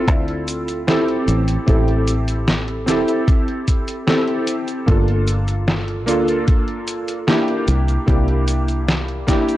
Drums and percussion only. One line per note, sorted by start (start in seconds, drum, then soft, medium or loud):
0.08 kick loud
0.08 closed hi-hat medium
0.08 cabasa soft
0.28 closed hi-hat soft
0.48 closed hi-hat loud
0.48 cabasa medium
0.68 closed hi-hat medium
0.68 cabasa soft
0.88 snare loud
0.88 closed hi-hat medium
0.88 cabasa soft
1.08 closed hi-hat soft
1.28 closed hi-hat loud
1.28 cabasa medium
1.48 closed hi-hat medium
1.48 cabasa soft
1.68 kick loud
1.68 closed hi-hat medium
1.68 cabasa soft
1.88 closed hi-hat soft
2.07 closed hi-hat loud
2.07 cabasa medium
2.28 closed hi-hat medium
2.28 cabasa soft
2.48 snare loud
2.48 closed hi-hat medium
2.48 cabasa soft
2.68 closed hi-hat soft
2.88 snare medium
2.88 closed hi-hat loud
2.88 cabasa medium
3.08 closed hi-hat medium
3.08 cabasa soft
3.28 kick loud
3.28 closed hi-hat medium
3.28 cabasa soft
3.48 closed hi-hat soft
3.68 kick medium
3.68 closed hi-hat loud
3.68 cabasa medium
3.88 closed hi-hat medium
3.88 cabasa soft
4.08 snare loud
4.08 closed hi-hat medium
4.08 cabasa soft
4.28 closed hi-hat soft
4.47 closed hi-hat loud
4.47 cabasa medium
4.68 closed hi-hat medium
4.68 cabasa soft
4.88 kick loud
4.88 closed hi-hat medium
4.88 cabasa soft
5.08 closed hi-hat soft
5.28 closed hi-hat medium
5.28 cabasa medium
5.48 closed hi-hat medium
5.48 cabasa soft
5.68 snare loud
5.68 closed hi-hat medium
5.68 cabasa soft
5.88 closed hi-hat soft
6.08 closed hi-hat loud
6.08 cabasa medium
6.28 closed hi-hat medium
6.28 cabasa soft
6.48 kick loud
6.48 closed hi-hat medium
6.48 cabasa soft
6.68 closed hi-hat soft
6.88 closed hi-hat loud
6.88 cabasa medium
7.08 closed hi-hat medium
7.08 cabasa soft
7.28 snare loud
7.28 closed hi-hat medium
7.28 cabasa soft
7.48 closed hi-hat soft
7.68 closed hi-hat medium
7.68 cabasa medium
7.88 closed hi-hat medium
7.88 cabasa soft
8.08 kick loud
8.08 closed hi-hat medium
8.08 cabasa soft
8.28 closed hi-hat soft
8.48 closed hi-hat medium
8.48 cabasa medium
8.68 closed hi-hat medium
8.68 cabasa soft
8.88 snare loud
8.88 closed hi-hat medium
8.88 cabasa soft
9.08 closed hi-hat soft
9.28 kick medium
9.28 snare medium
9.28 closed hi-hat medium
9.28 cabasa medium
9.49 closed hi-hat soft
9.49 cabasa soft